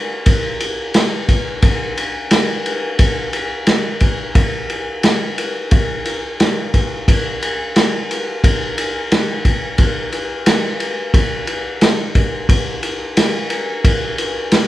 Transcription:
0.26 kick, ride
0.60 ride
0.94 snare, ride
1.29 kick, ride
1.62 kick, ride
1.97 ride
2.31 snare, ride
2.66 ride
2.99 kick, ride
3.33 ride
3.67 snare, ride
4.00 kick, ride
4.35 kick, ride
4.70 ride
5.03 snare, ride
5.38 ride
5.71 kick, ride
6.05 ride
6.40 snare, ride
6.74 kick, ride
7.08 kick, ride
7.42 ride
7.76 snare, ride
8.11 ride
8.44 kick, ride
8.78 ride
9.12 snare, ride
9.45 kick, ride
9.78 kick, ride
10.12 ride
10.46 snare, ride
10.80 ride
11.14 kick, ride
11.47 ride
11.81 snare, ride
12.15 kick, ride
12.49 kick, ride
12.83 ride
13.17 snare, ride
13.50 ride
13.85 kick, ride
14.18 ride
14.52 snare, ride

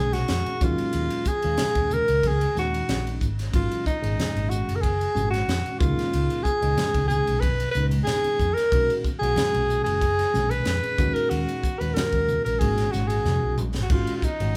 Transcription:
Already playing: B1 A#2 D#3 G#3 C#4 G#4
0.13 F#4, snare, ride
0.28 F2, snare, ride
0.46 muted fretless electric bass stroke, ride
0.61 D#2 A#2 D#3 F#3 G#3 C#4 F4, kick, hi-hat pedal, high conga
0.78 muted fretless electric bass stroke, ride
0.93 D#2, ride
1.10 ride
1.25 G#4, muted fretless electric bass stroke, kick, hi-hat pedal
1.42 D#2 A#2 D#3 G#3 C#4 F4, ride
1.57 snare, ride, muted conga, high conga
1.75 D#2, kick, ride
1.91 A#4, hi-hat pedal, low conga
2.08 C#2, ride
2.23 G#4, kick, ride, muted conga, high conga
2.41 ride
2.55 D#2 A#2 D#3 G#3 C#4 D#4 F#4, snare, hi-hat pedal
2.74 ride
2.89 A#1, snare, ride, high conga
3.07 ride
3.21 G#1, kick, hi-hat pedal
3.39 snare, ride
3.53 G#1 A#2 D#3 F#3 G#3 C#4 F4, kick, ride, muted conga
3.72 ride
3.86 D#4, muted fretless electric bass stroke, kick, hi-hat pedal
4.01 G#1 A#2 D#3 G#3 C#4 G#4, ride
4.19 snare, ride, muted conga, high conga
4.35 G#1, ride
4.49 F#4, hi-hat pedal
4.68 F#1, ride
4.76 A#4
4.81 G#4, kick, ride, muted conga
5.01 ride
5.14 G#1 A#2 D#3 G#3 C#4 F#4, hi-hat pedal, muted conga, high conga
5.31 F#4, snare, ride
5.48 F2, snare, ride
5.65 muted fretless electric bass stroke, ride
5.79 C#2 A#2 D#3 G#3 C#4 F4, kick, hi-hat pedal, high conga
5.98 muted fretless electric bass stroke, snare, ride
6.13 C#2, ride, muted conga
6.30 ride
6.43 G#4, muted fretless electric bass stroke, kick, hi-hat pedal
6.61 C#2 A#2 D#3 G#3 C#4 D#4, ride
6.78 snare, ride, muted conga, high conga
6.94 C#2, kick, ride
7.08 G#4, hi-hat pedal, low conga
7.27 B1, ride
7.40 B4, kick, ride, muted conga, high conga
7.60 ride
7.71 C#2 D#3 B4, hi-hat pedal
7.75 A#2 G#3 C#4 D#4
7.91 ride
8.04 A#2 G#4, snare, ride, high conga
8.24 muted fretless electric bass stroke, ride
8.39 F2, kick, hi-hat pedal
8.54 A#4, muted fretless electric bass stroke, ride
8.58 snare
8.72 B1 A#2 D#3 G#3 C#4 F#4, kick, ride, muted conga
8.90 ride
9.04 muted fretless electric bass stroke, kick, hi-hat pedal
9.19 B1 A#2 D#3 G#3 C#4 F#4 G#4, ride
9.36 snare, ride, muted conga, high conga
9.54 B1, ride
9.70 hi-hat pedal
9.84 F#1 G#4, ride
10.01 kick, ride, muted conga
10.19 snare, ride
10.33 B1 A#2 D#3 G#3 C#4 G#4, snare, hi-hat pedal, muted conga, high conga
10.51 B4, ride
10.65 F2, snare, ride
10.83 muted fretless electric bass stroke, ride
10.98 D#2 A#2 D#3 G#3 C#4 F#4, kick, hi-hat pedal, high conga
11.14 A#4, muted fretless electric bass stroke, ride
11.30 D#2 F#4, ride, muted conga
11.48 ride
11.63 muted fretless electric bass stroke, kick, hi-hat pedal
11.80 D#2 A#2 D#3 G#3 C#4 F#4 B4, ride
11.94 A#4, snare, ride, muted conga, high conga
12.12 D#2, kick, ride
12.28 hi-hat pedal, low conga
12.45 A#1 A#4, ride
12.59 G#1 A#2 D#3 G#3 C#4 F#4 G#4, kick, ride, muted conga, high conga
12.78 snare, ride
12.92 G#1 A#2 D#3 G#3 C#4 F#4, snare, hi-hat pedal, muted conga
13.08 G#4, ride
13.25 F2, snare, high conga, low conga
13.43 B1
13.58 A#1, hi-hat pedal, mid tom
13.75 G#1, snare
13.82 F#4
13.90 G#1 A#2 D#3 G#3 C#4 F4 F#4, kick, crash
14.07 ride
14.16 F4
14.22 D#4, muted fretless electric bass stroke, kick, hi-hat pedal
14.40 G#1 A#2 D#3 G#3 C#4 F#4, ride

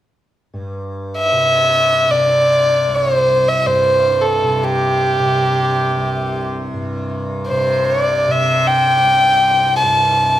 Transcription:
0.53 G2
1.18 E5
1.32 C3
2.09 C3 D5
2.88 C2
2.95 C#5
3.15 C5
3.48 E5
3.66 G2 C5
4.21 A4
4.44 C3
4.63 G4
5.20 C3
5.96 C2
6.74 G2
7.47 C3 C5
7.85 C#5
8.03 D5
8.28 C3 E5
8.67 G5
9.04 C2
9.76 A5
9.83 G2

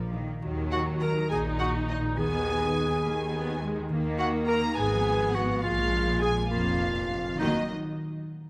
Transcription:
Already playing: A#1 A#2 F3 F4 A#4 F5 D6
0.00 D5
0.13 D#3 F4
0.28 A#3
0.42 D#2 D#3 F#3
0.57 A#3
0.71 F#4 D#5 F#5
0.86 A#4
1.01 A#4 D#5 A#5
1.15 D#6
1.29 A#1 A#2 D#4 G#4 G#5 A#5
1.44 D#6
1.58 F#4 D#5 F#5
1.73 A#4
1.88 D#4 D#5
2.03 D#4
2.17 D#2 D#3 B3 G#4 G#5
2.31 B3
2.45 D#5
2.60 B4
2.74 D#5
2.89 D#6
3.03 D#2 D#3 A#3 B5
3.18 D#6
3.32 B3 D#5
3.46 B4
3.61 G#3 D#5
3.76 D#4
3.89 D#2 D#3 A#3
4.04 A#3
4.18 F#4 D#5 F#5
4.33 A#4
4.47 A#4 D#5 A#5
4.62 D#6
4.76 G#1 G#2 B3 G#4 G#5
4.91 F3
5.05 F4
5.20 B4
5.33 F#4 G#4 F#5
5.49 F5
5.63 A#1 A#2 G#3 F4 F5
5.78 F3
5.93 D4
6.07 B4
6.21 G#4 G#5
6.36 D5
6.50 F1 F2 A#3 F4 F5 B5
6.65 D5
6.80 G#4
6.95 B4
7.10 D4
7.24 G#3
7.34 D#3 F#3
7.39 D#2 D#3 A#3 D#4 F#4 A#4 D#5
7.43 D#5

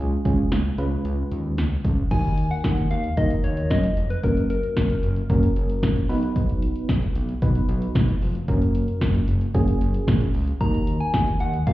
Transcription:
0.00 C#2 G#3 C#4 F4 G#4
0.25 C#2 G#3 C#4 F4 G#4, kick, closed hi-hat
0.52 C#2, snare, closed hi-hat
0.78 C#2 G#3 C#4 F4 B4, closed hi-hat
1.05 C#2, closed hi-hat
1.31 D#2, closed hi-hat
1.58 C#2, snare, closed hi-hat
1.84 C#2, kick, closed hi-hat
2.11 D#2 A#3 D#4 F#4 A#4 G#5, kick, closed hi-hat, crash
2.25 closed hi-hat
2.38 closed hi-hat
2.51 F#5, closed hi-hat
2.64 D#2, kick, snare, closed hi-hat
2.77 closed hi-hat
2.91 D#2 F5, closed hi-hat
3.04 closed hi-hat
3.17 D#2 A#3 D#4 F#4 A#4 D#5, kick, closed hi-hat
3.31 closed hi-hat
3.44 D#2 C#5, closed hi-hat
3.57 closed hi-hat
3.70 F#2 D#5, kick, snare, closed hi-hat
3.83 closed hi-hat
3.97 F1, closed hi-hat
4.10 B4, closed hi-hat
4.23 F#1 A#3 C#4 F#4 A#4, kick, closed hi-hat
4.37 closed hi-hat
4.50 A#4, closed hi-hat
4.63 closed hi-hat
4.77 F#1, kick, snare, closed hi-hat
4.90 closed hi-hat
5.03 F#1, closed hi-hat
5.16 closed hi-hat
5.30 F#1 A#3 C#4 F#4 A#4, kick, closed hi-hat
5.43 closed hi-hat
5.56 F#1, closed hi-hat
5.70 closed hi-hat
5.83 A#1, kick, snare, closed hi-hat
5.96 closed hi-hat
6.09 B1 B3 D#4 F#4 B4, open hi-hat
6.23 closed hi-hat
6.36 kick, closed hi-hat
6.49 closed hi-hat
6.62 closed hi-hat
6.76 closed hi-hat
6.89 B1, kick, snare, closed hi-hat
7.02 closed hi-hat
7.15 B1, closed hi-hat
7.29 closed hi-hat
7.42 B1 B3 D#4 F#4 B4, kick, closed hi-hat
7.55 closed hi-hat
7.69 B1, closed hi-hat
7.82 closed hi-hat
7.95 B1, kick, snare, closed hi-hat
8.08 closed hi-hat
8.22 F1, open hi-hat
8.35 closed hi-hat
8.48 F#1 A#3 C#4 F#4 A#4, kick, closed hi-hat
8.62 closed hi-hat
8.75 closed hi-hat
8.88 closed hi-hat
9.01 F#1, kick, snare, closed hi-hat
9.15 closed hi-hat
9.28 F#1, closed hi-hat
9.41 closed hi-hat
9.54 F#1 A#3 C#4 F#4 G#4, kick, closed hi-hat
9.68 closed hi-hat
9.81 F#1, closed hi-hat
9.94 closed hi-hat
10.08 A#1, kick, snare, closed hi-hat
10.21 closed hi-hat
10.34 C#2, open hi-hat
10.48 closed hi-hat
10.61 D#2 A#3 D#4 F#4 A#4 A#5, kick, closed hi-hat
10.74 closed hi-hat
10.87 closed hi-hat
11.00 G#5, closed hi-hat
11.14 D#2, kick, snare, closed hi-hat
11.27 closed hi-hat
11.40 D#2 F#5, closed hi-hat
11.54 closed hi-hat
11.67 D#2 A#3 D#4 F#4 A#4 F5, kick, closed hi-hat

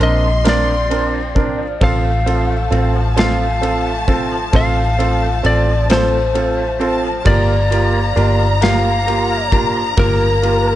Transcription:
Already playing: F3 C4
0.00 A#1 C4 D4 A#4 D#5 C6, ride
0.23 F3
0.44 F3 C4 D4 A#4, snare, ride
0.49 D5
0.69 C4
0.90 F3 C4 D4 A#4, ride
1.14 C4
1.35 C4 D4 A#4, kick, ride
1.58 F3
1.81 A1 F3 C4 F4 A4 F5 A5, kick, ride
2.04 A3
2.26 F3 C4 F4 A4, ride
2.50 A3
2.71 A1 C4 F4 A4, ride
2.95 F3
3.16 F3 C4 F4 A4 F5, snare, ride
3.39 A3
3.61 F3 C4 F4 A4, ride
3.86 A3
4.08 C4 F4 A4, kick, ride
4.31 F3
4.53 A1 F3 C4 F4 A4 F5, kick, ride
4.76 A3
4.99 F3 C4 F4 A4, ride
5.22 A3
5.43 A1 C4 F4 A4 D5, ride
5.67 F3
5.90 F3 C4 F4 A4 C5, snare, ride
6.12 A3
6.34 F3 C4 F4 A4, ride
6.57 A3
6.80 C4 F4 A4 A5, ride
7.02 F3
7.20 A5
7.25 G1 F3 A#3 F4 G4 D5 A#5, kick, ride
7.47 A#3
7.70 F3 A#3 F4 G4, ride
7.92 A#3
8.15 G1 A#3 D4 F4 G4, ride
8.38 F3
8.61 F3 A#3 F4 G4 F5, snare, ride
8.84 A#3
9.07 F3 A#3 F4 G4, ride
9.30 A#3
9.52 A#3 D4 F4 G4, kick, ride
9.74 F3
9.97 G1 F3 A#3 F4 G4 A#4, kick, ride
10.20 A#3
10.42 F3 A#3 F4 G4, ride
10.66 A#3

